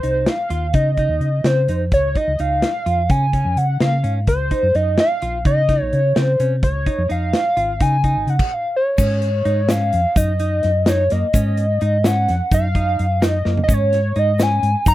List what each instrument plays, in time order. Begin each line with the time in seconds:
Already playing: analog synth lead C5
0.03 fingered electric bass C2, clean electric guitar D#4, closed hi-hat
0.26 analog synth lead F5, snare, closed hi-hat
0.50 fingered electric bass D#2, clean electric guitar F4, closed hi-hat
0.73 fingered electric bass C#3, clean electric guitar D#4, analog synth lead D#5, kick, closed hi-hat
0.97 clean electric guitar D#4, kick, closed hi-hat
1.09 fingered electric bass D#2
1.20 fingered electric bass C#3, closed hi-hat
1.44 fingered electric bass C#3, clean electric guitar C4, analog synth lead C5, snare, closed hi-hat
1.68 fingered electric bass F2, clean electric guitar D#4, closed hi-hat
1.92 fingered electric bass C#2, analog synth lead C#5, kick, closed hi-hat
2.15 clean electric guitar D#4, analog synth lead D#5, kick, closed hi-hat
2.28 fingered electric bass C#2
2.39 fingered electric bass C#2, clean electric guitar D#4, analog synth lead F5, closed hi-hat
2.62 snare, closed hi-hat
2.86 fingered electric bass F2, clean electric guitar F4, closed hi-hat
3.09 fingered electric bass C#3, clean electric guitar C#4, analog synth lead G#5, kick, closed hi-hat
3.33 clean electric guitar C#4, kick, closed hi-hat
3.45 fingered electric bass F2
3.57 fingered electric bass C#3, analog synth lead F#5, closed hi-hat
3.80 fingered electric bass C#3, clean electric guitar A#3, analog synth lead F5, snare, closed hi-hat
4.04 fingered electric bass G#2, clean electric guitar C#4, closed hi-hat
4.27 fingered electric bass C#2, analog synth lead C5, kick, closed hi-hat
4.51 clean electric guitar D#4, kick, closed hi-hat
4.63 fingered electric bass F#2
4.75 fingered electric bass F#2, clean electric guitar D#4, analog synth lead D#5, closed hi-hat
4.98 analog synth lead F5, snare, closed hi-hat
5.22 fingered electric bass A#1, clean electric guitar F4, closed hi-hat
5.45 fingered electric bass C#3, clean electric guitar D#4, analog synth lead D#5, kick, closed hi-hat
5.69 clean electric guitar D#4, kick, snare, closed hi-hat
5.82 fingered electric bass A#1, analog synth lead C#5
5.93 fingered electric bass C#3, analog synth lead C#5, closed hi-hat
6.16 fingered electric bass C#3, clean electric guitar C4, analog synth lead C5, snare, closed hi-hat
6.40 fingered electric bass C3, clean electric guitar C#4, closed hi-hat
6.63 fingered electric bass C#2, analog synth lead C#5, kick, closed hi-hat
6.86 clean electric guitar D#4, kick, closed hi-hat
6.98 fingered electric bass F2
7.09 fingered electric bass F2, clean electric guitar D#4, analog synth lead F5, closed hi-hat
7.33 snare, closed hi-hat
7.57 fingered electric bass G#1, clean electric guitar F4, closed hi-hat
7.80 fingered electric bass C#3, clean electric guitar D#4, analog synth lead G#5, kick, closed hi-hat
8.04 clean electric guitar D#4, kick, closed hi-hat
8.16 fingered electric bass G#1
8.27 fingered electric bass C#3, analog synth lead F#5, closed hi-hat
8.39 kick, crash
8.54 analog synth lead F5
8.76 analog synth lead C#5
8.98 fingered electric bass G#2, clean electric guitar C#4, kick, crash, shaker
9.22 closed hi-hat
9.45 fingered electric bass G#2, clean electric guitar D#4, closed hi-hat
9.69 clean electric guitar C#4, analog synth lead F5, snare, closed hi-hat, shaker
9.93 fingered electric bass F2, closed hi-hat
10.16 fingered electric bass F#2, clean electric guitar D#4, analog synth lead D#5, kick, closed hi-hat, shaker
10.39 clean electric guitar D#4, closed hi-hat
10.63 fingered electric bass F#2, snare, closed hi-hat
10.86 clean electric guitar D#4, analog synth lead C#5, snare, closed hi-hat, shaker
11.10 fingered electric bass F#2, clean electric guitar A#3, analog synth lead D#5, snare, closed hi-hat
11.34 fingered electric bass G#2, clean electric guitar C#4, kick, closed hi-hat, shaker
11.57 closed hi-hat
11.81 fingered electric bass G#2, clean electric guitar D#4, closed hi-hat
12.04 clean electric guitar C#4, analog synth lead F#5, snare, closed hi-hat, shaker
12.28 fingered electric bass F2, snare, closed hi-hat
12.51 fingered electric bass F#2, clean electric guitar D#4, analog synth lead F5, kick, closed hi-hat, shaker
12.75 clean electric guitar D#4, kick, closed hi-hat
12.99 fingered electric bass F#2, closed hi-hat
13.22 clean electric guitar D#4, analog synth lead D#5, snare, closed hi-hat, shaker
13.45 fingered electric bass F#2, clean electric guitar A#3, snare
13.57 floor tom
13.64 analog synth lead D#5
13.68 fingered electric bass G#2, clean electric guitar C#4, kick, closed hi-hat, shaker
13.74 analog synth lead C#5
13.93 snare, closed hi-hat
14.16 fingered electric bass G#2, clean electric guitar D#4, analog synth lead D#5, closed hi-hat
14.39 clean electric guitar C#4, analog synth lead G#5, snare, closed hi-hat, shaker
14.63 fingered electric bass G#2, closed hi-hat
14.86 fingered electric bass F#2, clean electric guitar D#4, analog synth lead A#5, kick, closed hi-hat, shaker